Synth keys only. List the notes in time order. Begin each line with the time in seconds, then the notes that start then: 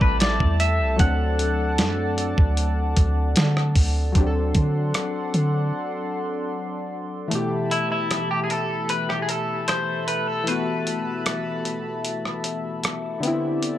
Already playing: G3 A3 C4 E4 A4
0.96 F#3 A3 C4
1.02 D4 A4
4.12 F#3 C4
4.17 D4 G4
4.27 A4
7.28 E3 A3
7.33 B2 G4
10.44 E3 A3
10.49 B3 F#4
13.20 D3 B3
13.25 C4 E4